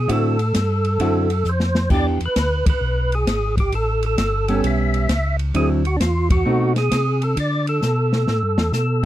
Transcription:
Already playing: tonewheel organ G#4
0.08 tonewheel organ A2, hollow-body jazz guitar D3 C4 E4 F#4, kick, ride
0.12 tonewheel organ A4
0.39 ride
0.54 tonewheel organ G2, kick, snare, hi-hat pedal, ride
0.85 ride
0.99 tonewheel organ F#2, hollow-body jazz guitar D3 C4 E4 F#4, kick, ride
1.30 ride
1.45 tonewheel organ F2, hi-hat pedal
1.49 tonewheel organ C5
1.60 snare
1.75 snare
1.90 tonewheel organ E2, hollow-body jazz guitar E3 B3 D4 G4, kick, crash
1.94 tonewheel organ D5
2.20 tonewheel organ E2, ride
2.26 tonewheel organ B4
2.36 tonewheel organ D2, kick, snare, hi-hat pedal, ride
2.66 tonewheel organ D2 B4, kick, ride
2.81 tonewheel organ B1
3.12 tonewheel organ G#4, ride
3.27 tonewheel organ G#1, kick, snare, hi-hat pedal, ride
3.57 tonewheel organ G4, kick, ride
3.72 tonewheel organ A1 A4, kick, ride
4.03 tonewheel organ A4, ride
4.18 tonewheel organ G1, kick, snare, hi-hat pedal, ride
4.48 hollow-body jazz guitar G3 B3 C#4, ride
4.64 tonewheel organ B1 E5, kick, ride
4.94 ride
5.09 tonewheel organ C#2, kick, snare, hi-hat pedal, ride
5.39 ride
5.54 tonewheel organ D2 G#4, hollow-body jazz guitar D3 F#3 C4 E4, kick, ride
5.85 tonewheel organ F#4, ride
5.96 tonewheel organ E2 D4, kick
6.00 tonewheel organ F4, snare, hi-hat pedal, ride
6.30 tonewheel organ F#4, kick, ride
6.45 tonewheel organ B2, hollow-body jazz guitar A3 C4 D#4
6.76 tonewheel organ G#4, snare, ride
6.91 tonewheel organ C3, kick, snare, hi-hat pedal, ride
7.22 tonewheel organ A4, ride
7.37 tonewheel organ D3 D5, kick, ride
7.67 tonewheel organ A4, ride
7.82 tonewheel organ B2, snare, hi-hat pedal
8.13 snare
8.28 tonewheel organ A2, snare
8.43 tonewheel organ G2
8.58 tonewheel organ E2, snare
8.72 tonewheel organ B2 A4, snare, hi-hat pedal

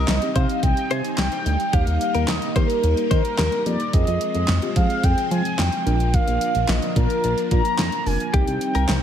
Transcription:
Already playing: string machine G3 C4 D#4, clean electric guitar A#4, soft synth lead D#5
0.08 analog synth bass C2, snare, clap, closed hi-hat
0.22 synth keys C4 D#4 G4, closed hi-hat
0.36 analog synth bass C3, synth keys C4 D#4 G4, clean electric guitar C5, soft synth lead F5, kick, closed hi-hat
0.49 closed hi-hat
0.63 analog synth bass C2, soft synth lead G5, kick, closed hi-hat
0.77 closed hi-hat
0.91 analog synth bass C3, clean electric guitar C5, soft synth lead G#5, closed hi-hat
1.05 closed hi-hat
1.18 analog synth bass C2, soft synth lead G5, snare, clap, closed hi-hat
1.32 closed hi-hat
1.46 analog synth bass D2, closed hi-hat
1.60 closed hi-hat
1.73 analog synth bass D#2, string machine A#3, synth keys A#3 D#4 G4, clean electric guitar G4, soft synth lead F5, kick, closed hi-hat
1.87 analog synth bass D#2, closed hi-hat
2.01 closed hi-hat
2.15 analog synth bass D#2, clean electric guitar A#4, closed hi-hat
2.28 analog synth bass D#2, soft synth lead D#5, snare, clap, closed hi-hat
2.42 closed hi-hat
2.56 analog synth bass D#3, synth keys A#3 D#4 G4, soft synth lead A#4, clean electric guitar C5, kick, closed hi-hat
2.70 closed hi-hat
2.84 analog synth bass D#2, closed hi-hat
2.97 closed hi-hat
3.11 analog synth bass D#3, soft synth lead A#4, clean electric guitar C5, kick, closed hi-hat
3.25 closed hi-hat
3.38 analog synth bass D#2, clean electric guitar A#4, snare, clap, closed hi-hat
3.52 closed hi-hat
3.66 analog synth bass F2, synth keys A#3 D#4 G4, soft synth lead D5, closed hi-hat
3.80 closed hi-hat
3.93 analog synth bass F2, string machine F3 G#3 C4, synth keys C4 F4 G#4, soft synth lead D#5, kick, closed hi-hat
4.07 analog synth bass F2, closed hi-hat
4.21 closed hi-hat
4.35 analog synth bass F2, closed hi-hat
4.48 analog synth bass F2, snare, clap, closed hi-hat
4.62 synth keys C4 F4 G4, closed hi-hat
4.76 analog synth bass F3, synth keys C4 F4 G#4, soft synth lead F5, kick, closed hi-hat
4.90 closed hi-hat
5.04 analog synth bass F2, soft synth lead G5, kick, closed hi-hat
5.18 closed hi-hat
5.31 analog synth bass F3, soft synth lead G#5, closed hi-hat
5.45 closed hi-hat
5.59 analog synth bass F2, soft synth lead G5, snare, clap, closed hi-hat
5.72 closed hi-hat
5.86 analog synth bass A#1, string machine A#3 D4, synth keys D4 F4 A#4, closed hi-hat
6.00 closed hi-hat
6.14 soft synth lead F5, kick, closed hi-hat
6.28 analog synth bass A#1, closed hi-hat
6.41 closed hi-hat
6.55 analog synth bass A#1, closed hi-hat
6.69 analog synth bass A#1, soft synth lead D#5, snare, clap, closed hi-hat
6.82 closed hi-hat
6.96 analog synth bass A#2, synth keys D4 F4 A#4, soft synth lead A#4, kick, closed hi-hat
7.10 closed hi-hat
7.24 analog synth bass A#1, closed hi-hat
7.38 closed hi-hat
7.51 analog synth bass A#2, soft synth lead A#5, kick, closed hi-hat
7.65 closed hi-hat
7.79 analog synth bass F2, snare, clap, closed hi-hat
7.92 closed hi-hat
8.06 analog synth bass F1, synth keys D4 F4 A#4, soft synth lead G#5, open hi-hat
8.20 closed hi-hat
8.33 analog synth bass C2, string machine G3 C4 D#4, synth keys C4 D#4 G4, clean electric guitar G4, soft synth lead G5, kick, closed hi-hat
8.47 analog synth bass C2, closed hi-hat
8.61 closed hi-hat
8.75 analog synth bass C2, clean electric guitar A#4, closed hi-hat
8.89 analog synth bass C2, snare, clap, closed hi-hat

